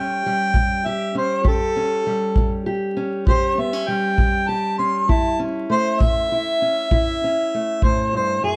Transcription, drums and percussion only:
0.54 kick
1.45 kick
2.36 kick
3.27 kick
4.18 kick
5.09 kick
6.00 kick
6.91 kick
7.82 kick

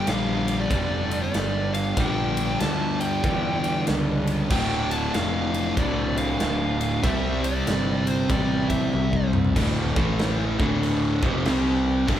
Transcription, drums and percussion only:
0.07 snare, ride
0.48 ride
0.71 kick, ride
1.11 ride
1.34 snare, ride
1.74 ride
1.97 kick, ride
2.37 ride
2.60 snare, ride
3.01 ride
3.24 kick, ride
3.64 ride
3.87 snare, ride
4.27 ride
4.50 kick, crash
4.91 ride
5.14 snare, ride
5.54 ride
5.77 kick, ride
6.17 ride
6.40 snare, ride
6.81 ride
7.04 kick, ride
7.44 ride
7.67 snare, ride
8.07 ride
8.30 kick, ride
8.70 kick, ride
8.93 high tom
9.13 kick
9.33 mid tom
9.45 floor tom
9.56 kick, crash
9.96 kick
10.19 snare, crash
10.60 kick
10.83 crash
11.23 kick
11.45 snare, crash
12.08 kick, crash

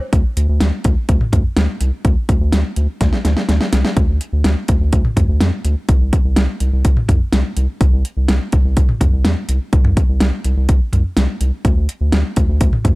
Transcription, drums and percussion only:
0.13 kick, closed hi-hat
0.37 closed hi-hat
0.60 snare, closed hi-hat
0.84 kick, closed hi-hat
1.09 kick, closed hi-hat
1.21 mid tom
1.33 kick, closed hi-hat, mid tom
1.57 snare, closed hi-hat
1.81 closed hi-hat
2.05 kick, closed hi-hat
2.29 kick, closed hi-hat
2.52 snare, closed hi-hat
2.76 closed hi-hat
3.01 kick, snare, closed hi-hat
3.13 snare
3.25 snare, closed hi-hat
3.37 snare
3.49 snare, closed hi-hat
3.61 snare
3.73 snare, closed hi-hat
3.85 snare
3.97 kick, closed hi-hat
4.21 closed hi-hat
4.44 snare, closed hi-hat
4.68 kick, closed hi-hat
4.93 kick, closed hi-hat
5.05 mid tom
5.17 kick, closed hi-hat, mid tom
5.41 snare, closed hi-hat
5.65 closed hi-hat
5.89 kick, closed hi-hat
6.13 kick, closed hi-hat
6.36 snare, closed hi-hat
6.60 closed hi-hat
6.85 kick, closed hi-hat
6.97 mid tom
7.09 kick, closed hi-hat, mid tom
7.33 snare, closed hi-hat
7.57 closed hi-hat
7.81 kick, closed hi-hat
8.05 closed hi-hat
8.28 snare, closed hi-hat
8.52 kick, closed hi-hat
8.77 kick, closed hi-hat
8.89 mid tom
9.01 kick, closed hi-hat, mid tom
9.25 snare, closed hi-hat
9.49 closed hi-hat
9.73 kick, closed hi-hat
9.85 mid tom
9.97 kick, closed hi-hat
10.20 snare, closed hi-hat
10.44 closed hi-hat
10.69 kick, closed hi-hat
10.93 closed hi-hat, mid tom
11.17 snare, closed hi-hat
11.41 closed hi-hat
11.65 kick, closed hi-hat
11.89 closed hi-hat
12.12 snare, closed hi-hat
12.36 kick, closed hi-hat
12.61 kick, closed hi-hat
12.73 mid tom
12.85 kick, closed hi-hat, mid tom

